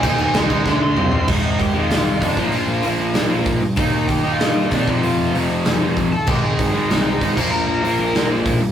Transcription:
0.03 picked electric bass D#2, distorted electric guitar D#3 A#3 D#4, lead electric guitar C5 G#5, kick, crash
0.18 picked electric bass D#2, distorted electric guitar D#3 A#3 D#4, lead electric guitar C5 G#5, crash
0.34 picked electric bass C#2, distorted electric guitar D#3 A#3 D#4, lead electric guitar D#5 C6, snare, crash
0.50 distorted electric guitar D#3 A#3 D#4, lead electric guitar D#5 C6, kick, crash
0.66 picked electric bass D2, distorted electric guitar D3 A3 D4, lead electric guitar D#5 C6, kick, snare
0.82 picked electric bass D2, distorted electric guitar D3 A3 D4, lead electric guitar C6
0.96 picked electric bass C2, distorted electric guitar C3 G3 C4, mid tom
1.12 picked electric bass G1, distorted electric guitar C3 G3 C4, floor tom
1.28 picked electric bass G#1, distorted electric guitar G#2 D#3 G#3, lead electric guitar D#4 D#5, kick, crash
1.42 picked electric bass G#1
1.59 picked electric bass G#1, lead electric guitar G4 G5, kick, open hi-hat
1.74 distorted electric guitar G#2 D#3 G#3
1.83 lead electric guitar F4 F5
1.90 picked electric bass C2, snare, open hi-hat
2.20 picked electric bass F2, distorted electric guitar G#2 D#3, lead electric guitar D4 D5, kick, open hi-hat
2.25 distorted electric guitar G#3
2.37 picked electric bass A#1, distorted electric guitar A#2 F3, kick
2.41 distorted electric guitar A#3
2.46 lead electric guitar D#4 D#5
2.52 picked electric bass A#1, lead electric guitar F4, open hi-hat
2.56 lead electric guitar F5
2.68 picked electric bass A#1
2.83 picked electric bass A#1, distorted electric guitar A#2 F3, open hi-hat
2.87 distorted electric guitar A#3
2.99 picked electric bass A#1
3.14 picked electric bass A#1, snare, open hi-hat
3.29 picked electric bass A#1, distorted electric guitar A#2 F3 A#3
3.45 picked electric bass A#1, kick, open hi-hat
3.61 picked electric bass G2
3.76 picked electric bass D#2, distorted electric guitar D#3 A#3, lead electric guitar D#4 D#5, kick, open hi-hat
3.81 distorted electric guitar D#4
3.93 picked electric bass D#2
4.08 picked electric bass D#2, lead electric guitar G4 G5, kick, open hi-hat
4.23 distorted electric guitar A#3 D#4
4.27 distorted electric guitar D#3
4.32 lead electric guitar F4 F5
4.40 picked electric bass G2, snare, open hi-hat
4.70 picked electric bass C3, distorted electric guitar D#3 A#3 D#4, lead electric guitar D4 D5, kick, open hi-hat
4.85 picked electric bass F1, distorted electric guitar F2 C3, kick
4.89 distorted electric guitar F3
4.95 lead electric guitar D#4 D#5
5.03 picked electric bass F1, lead electric guitar F4 F5, open hi-hat
5.19 picked electric bass F1
5.32 picked electric bass F1, distorted electric guitar F2 C3 F3, open hi-hat
5.50 picked electric bass F1
5.65 picked electric bass F1, snare, open hi-hat
5.80 picked electric bass F1, distorted electric guitar F2 C3 F3
5.97 picked electric bass F1, kick, open hi-hat
6.12 picked electric bass D#2, lead electric guitar A4 A5
6.27 picked electric bass G#1, distorted electric guitar G#2 D#3 G#3, lead electric guitar G4 G5, kick, crash
6.43 picked electric bass G#1, lead electric guitar G#4 G#5
6.59 picked electric bass G#1, kick, open hi-hat
6.73 distorted electric guitar D#3 G#3
6.77 distorted electric guitar G#2
6.88 picked electric bass C2, lead electric guitar D#4 D#5, snare, open hi-hat
7.02 lead electric guitar D#4 D#5
7.20 picked electric bass G#1, distorted electric guitar G#2 D#3 G#3, kick, open hi-hat
7.35 picked electric bass A#1, distorted electric guitar A#2 F3 A#3, kick, crash
7.51 picked electric bass A#1, lead electric guitar A#4 A#5
7.65 picked electric bass A#1, lead electric guitar A#4 A#5
7.83 picked electric bass A#1, distorted electric guitar A#2 F3 A#3, open hi-hat
7.99 picked electric bass A#1
8.14 picked electric bass A#1, snare, open hi-hat
8.29 picked electric bass A#1, distorted electric guitar A#2 F3 A#3
8.46 picked electric bass A#1, kick, open hi-hat
8.60 picked electric bass G2

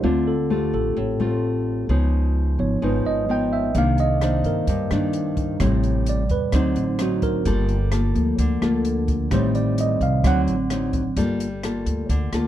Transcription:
0.03 upright bass D2, nylon-string guitar D3 A3 C4 F4, tine electric piano A3 C4 F4
0.27 tine electric piano A4
0.50 nylon-string guitar A3 C4 F4, tine electric piano G4
0.73 upright bass A1, tine electric piano A4
0.97 upright bass A1, nylon-string guitar A2
1.20 upright bass A1, nylon-string guitar A3 C4 F4
1.89 upright bass C#2, nylon-string guitar C#3 F3 B3 D#4
2.59 upright bass G#1, tine electric piano F3 B3 D#4 C#5
2.82 upright bass G#1, nylon-string guitar G#2 F3 B3 D#4, tine electric piano B4
3.05 upright bass G#1, tine electric piano D#5
3.29 nylon-string guitar F3 B3 D#4, tine electric piano G5
3.53 tine electric piano E5
3.75 upright bass C2, nylon-string guitar C3 D#3 A#3 D4, tine electric piano D#3 A#3 D4 F5, kick, closed hi-hat
3.98 tine electric piano D#5, closed hi-hat
4.21 nylon-string guitar D#3 A#3 D4, tine electric piano C5, cross-stick, closed hi-hat
4.44 upright bass G2, tine electric piano A#4, closed hi-hat
4.67 upright bass G2, nylon-string guitar G2, kick, closed hi-hat
4.91 upright bass G2, nylon-string guitar D#3 A#3 D4, cross-stick, closed hi-hat
5.13 closed hi-hat
5.37 kick, closed hi-hat
5.59 upright bass A1, nylon-string guitar A2 G3 C4 E4, tine electric piano C3 G3, kick, cross-stick, closed hi-hat
5.83 closed hi-hat
6.06 tine electric piano D5, closed hi-hat
6.29 upright bass E2, tine electric piano B4, kick, closed hi-hat
6.52 upright bass D2, nylon-string guitar D3 F#3 C4 D#4, tine electric piano F#3 C4 C5, kick, cross-stick, closed hi-hat
6.76 upright bass A1, tine electric piano D#4, closed hi-hat
6.99 nylon-string guitar F#3 C4 D#4, tine electric piano F#4, cross-stick, closed hi-hat
7.22 tine electric piano A#4, kick, closed hi-hat
7.45 upright bass G1, nylon-string guitar G3 A#3 F4 A4, kick, closed hi-hat
7.69 closed hi-hat
7.91 nylon-string guitar A#3 F4 A4, cross-stick, closed hi-hat
8.14 upright bass D2, tine electric piano F3 A#3, closed hi-hat
8.39 upright bass D2, nylon-string guitar D3, kick, closed hi-hat
8.62 upright bass D2, nylon-string guitar A#3 F4 A4, cross-stick, closed hi-hat
8.85 closed hi-hat
9.08 kick, closed hi-hat
9.31 upright bass A1, nylon-string guitar A2 G3 C4 D#4, tine electric piano D#3 G3 C4 C5, kick, cross-stick, closed hi-hat
9.55 tine electric piano D5, closed hi-hat
9.78 tine electric piano D#5, closed hi-hat
10.01 upright bass C2, tine electric piano F5, kick, closed hi-hat
10.24 upright bass D2, nylon-string guitar D3 F#3 C4 D#4, tine electric piano F#3 C4 F#5, kick, cross-stick, closed hi-hat
10.47 upright bass A1, closed hi-hat
10.70 nylon-string guitar F#3 C4 D#4, cross-stick, closed hi-hat
10.93 kick, closed hi-hat
11.17 upright bass G1, nylon-string guitar G3 A#3 F4 A4, tine electric piano D5, kick, closed hi-hat
11.40 closed hi-hat
11.63 nylon-string guitar A#3 F4 A4, cross-stick, closed hi-hat
11.86 upright bass D2, kick, closed hi-hat
12.09 upright bass D2, nylon-string guitar D3, kick, closed hi-hat
12.33 upright bass D2, nylon-string guitar A#3 F4 A4, cross-stick, closed hi-hat

